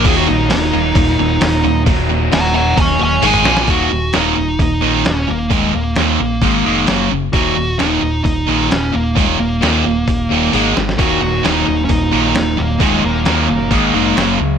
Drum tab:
HH |o---o---o---o---|o---o---o---o---|o---o---o---o---|o---o---o---o---|
SD |----o-------o---|----o---------oo|----o-------o---|----o-------o---|
T1 |----------------|------------o---|----------------|----------------|
T2 |----------------|-------------o--|----------------|----------------|
BD |o-------o-------|o-------o-------|o-------o-------|o-------o-------|

HH |o---o---o---o---|o---o---o---o---|o---o---o---o---|o---o---o---o---|
SD |----o-------o---|----o---------oo|----o-------o---|----o-------o---|
T1 |----------------|------------o---|----------------|----------------|
T2 |----------------|----------------|----------------|----------------|
BD |o-------o-------|o-------o-------|o-------o-------|o-------o-------|